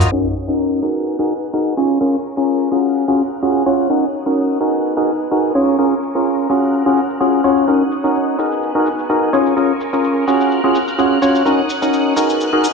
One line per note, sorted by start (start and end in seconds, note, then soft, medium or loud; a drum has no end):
0.00 0.11 F6 medium
0.00 closed hi-hat medium
0.00 cabasa soft
0.12 0.27 C#4 medium
0.12 0.27 D#4 medium
0.12 0.27 F#4 medium
0.12 0.27 A#4 medium
0.12 0.82 C#5 medium
0.12 0.82 F#5 medium
0.12 0.82 D#6 medium
0.36 cabasa medium
0.48 0.80 C#4 medium
0.48 0.80 D#4 medium
0.48 0.80 F#4 medium
0.48 0.80 A#4 medium
0.82 1.76 B3 medium
0.82 1.16 D#4 medium
0.82 1.16 F#4 medium
0.82 1.16 G#4 medium
0.82 1.16 A#4 medium
0.82 2.70 G#5 medium
0.82 1.76 F#6 medium
0.96 cabasa soft
1.07 cabasa soft
1.19 1.33 D#4 medium
1.19 1.33 F#4 medium
1.19 1.33 G#4 medium
1.19 1.33 A#4 loud
1.30 cabasa medium
1.43 cabasa soft
1.54 1.74 D#4 medium
1.54 1.74 F#4 medium
1.54 1.74 G#4 medium
1.54 1.74 A#4 medium
1.77 1.98 C#4 medium
1.77 1.98 F4 medium
1.77 1.98 G#4 medium
1.77 3.88 A#4 medium
1.77 1.98 C#5 loud
1.77 2.71 C#6 medium
1.90 cabasa soft
2.01 2.16 C#4 medium
2.01 2.16 F4 medium
2.01 2.16 G#4 medium
2.01 2.16 A#4 medium
2.25 cabasa medium
2.37 2.69 C#4 medium
2.37 2.69 F4 medium
2.37 2.69 G#4 medium
2.37 2.69 A#4 medium
2.48 cabasa soft
2.71 3.05 C#4 medium
2.71 3.05 F4 medium
2.71 3.05 F#4 medium
2.71 3.05 G#4 medium
2.71 3.88 F6 medium
2.71 4.59 F#6 medium
2.71 cabasa medium
2.85 cabasa soft
3.08 3.22 C#4 medium
3.08 3.22 F4 medium
3.08 3.22 F#4 medium
3.08 3.22 G#4 loud
3.19 cabasa medium
3.32 cabasa soft
3.42 3.63 C#4 medium
3.42 3.63 F4 medium
3.42 3.63 F#4 medium
3.42 3.63 G#4 loud
3.42 cabasa soft
3.66 3.87 C#4 medium
3.66 3.87 F4 medium
3.66 3.87 F#4 medium
3.66 3.87 C#5 loud
3.66 cabasa medium
3.79 cabasa soft
3.90 4.05 C#4 medium
3.90 4.05 D#4 medium
3.90 4.05 F#4 medium
3.90 4.05 A#4 medium
3.90 4.60 C#5 medium
3.90 4.60 D#6 medium
3.90 cabasa soft
4.14 cabasa medium
4.26 4.58 C#4 medium
4.26 4.58 D#4 medium
4.26 4.58 F#4 medium
4.26 4.58 A#4 medium
4.26 cabasa soft
4.37 cabasa soft
4.61 5.54 B3 medium
4.61 4.94 D#4 medium
4.61 4.94 F#4 medium
4.61 4.94 G#4 medium
4.61 4.94 A#4 medium
4.61 6.48 G#5 medium
4.61 5.54 F#6 medium
4.61 cabasa medium
4.74 cabasa soft
4.85 cabasa soft
4.97 5.11 D#4 medium
4.97 5.11 F#4 medium
4.97 5.11 G#4 medium
4.97 5.11 A#4 loud
5.08 cabasa medium
5.21 cabasa soft
5.31 5.52 D#4 medium
5.31 5.52 F#4 medium
5.31 5.52 G#4 medium
5.31 5.52 A#4 medium
5.31 cabasa soft
5.55 5.76 C#4 medium
5.55 5.76 F4 medium
5.55 5.76 G#4 medium
5.55 7.66 A#4 medium
5.55 5.76 C#5 loud
5.55 6.49 C#6 medium
5.55 cabasa medium
5.68 cabasa soft
5.79 5.94 C#4 medium
5.79 5.94 F4 medium
5.79 5.94 G#4 medium
5.79 5.94 A#4 medium
5.79 cabasa soft
6.03 cabasa medium
6.15 6.47 C#4 medium
6.15 6.47 F4 medium
6.15 6.47 G#4 medium
6.15 6.47 A#4 medium
6.15 cabasa soft
6.26 cabasa soft
6.49 6.83 C#4 medium
6.49 6.83 F4 medium
6.49 6.83 F#4 medium
6.49 6.83 G#4 medium
6.49 7.66 F6 medium
6.49 8.37 F#6 medium
6.49 cabasa medium
6.63 cabasa soft
6.74 cabasa soft
6.86 7.00 C#4 medium
6.86 7.00 F4 medium
6.86 7.00 F#4 medium
6.86 7.00 G#4 loud
6.97 cabasa medium
7.10 cabasa soft
7.20 7.41 C#4 medium
7.20 7.41 F4 medium
7.20 7.41 F#4 medium
7.20 7.41 G#4 loud
7.20 cabasa soft
7.44 7.65 C#4 medium
7.44 7.65 F4 medium
7.44 7.65 F#4 medium
7.44 7.65 C#5 loud
7.44 cabasa medium
7.57 cabasa soft
7.68 7.83 C#4 medium
7.68 7.83 D#4 medium
7.68 7.83 F#4 medium
7.68 7.83 A#4 medium
7.68 8.38 C#5 medium
7.68 8.38 D#6 medium
7.68 cabasa soft
7.92 cabasa medium
8.04 8.36 C#4 medium
8.04 8.36 D#4 medium
8.04 8.36 F#4 medium
8.04 8.36 A#4 medium
8.04 cabasa soft
8.15 cabasa soft
8.38 9.32 B3 medium
8.38 8.72 D#4 medium
8.38 8.72 F#4 medium
8.38 8.72 G#4 medium
8.38 8.72 A#4 medium
8.38 10.26 G#5 medium
8.38 9.32 F#6 medium
8.38 cabasa medium
8.52 cabasa soft
8.63 cabasa soft
8.75 8.89 D#4 medium
8.75 8.89 F#4 medium
8.75 8.89 G#4 medium
8.75 8.89 A#4 loud
8.86 cabasa medium
8.99 cabasa soft
9.10 9.30 D#4 medium
9.10 9.30 F#4 medium
9.10 9.30 G#4 medium
9.10 9.30 A#4 loud
9.10 cabasa soft
9.33 9.54 C#4 medium
9.33 9.54 F4 medium
9.33 9.54 G#4 medium
9.33 11.44 A#4 medium
9.33 9.54 C#5 loud
9.33 10.27 C#6 medium
9.33 cabasa medium
9.46 cabasa soft
9.57 9.72 C#4 medium
9.57 9.72 F4 medium
9.57 9.72 G#4 medium
9.57 9.72 A#4 medium
9.57 cabasa soft
9.81 cabasa medium
9.93 10.25 C#4 medium
9.93 10.25 F4 medium
9.93 10.25 G#4 medium
9.93 10.25 A#4 medium
9.93 cabasa soft
10.04 cabasa soft
10.27 10.61 C#4 medium
10.27 10.61 F4 medium
10.27 10.61 F#4 medium
10.27 10.61 G#4 medium
10.27 11.44 F6 medium
10.27 12.15 F#6 medium
10.27 cabasa medium
10.41 cabasa soft
10.51 cabasa soft
10.64 10.78 C#4 medium
10.64 10.78 F4 medium
10.64 10.78 F#4 medium
10.64 10.78 G#4 loud
10.75 cabasa medium
10.88 cabasa soft
10.98 11.19 C#4 medium
10.98 11.19 F4 medium
10.98 11.19 F#4 medium
10.98 11.19 G#4 loud
10.98 cabasa soft
11.22 11.43 C#4 medium
11.22 11.43 F4 medium
11.22 11.43 F#4 medium
11.22 11.43 C#5 loud
11.22 cabasa medium
11.35 cabasa soft
11.46 11.61 C#4 medium
11.46 11.61 D#4 medium
11.46 11.61 F#4 medium
11.46 11.61 A#4 loud
11.46 12.16 C#5 medium
11.46 12.16 D#6 medium
11.46 cabasa soft
11.70 cabasa medium
11.82 12.14 C#4 medium
11.82 12.14 D#4 medium
11.82 12.14 F#4 medium
11.82 12.14 A#4 medium
11.82 cabasa soft
11.93 cabasa soft
12.16 12.73 B3 medium
12.16 12.50 D#4 medium
12.16 12.50 F#4 medium
12.16 12.50 G#4 medium
12.16 12.50 A#4 medium
12.16 12.73 G#5 medium
12.16 12.73 F#6 medium
12.16 cabasa medium
12.30 cabasa soft
12.40 cabasa soft
12.53 12.67 D#4 medium
12.53 12.67 F#4 medium
12.53 12.67 G#4 medium
12.53 12.67 A#4 loud
12.64 cabasa medium